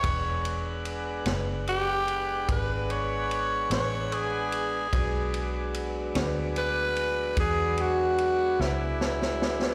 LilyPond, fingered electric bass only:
\new Staff \with { instrumentName = "Fingered electric bass" } { \clef bass \time 12/8 \key e \mixolydian \tempo 4. = 49 e,,4. fis,,4. gis,,4. a,,4. | b,,4. d,4. e,4. cis,4. | }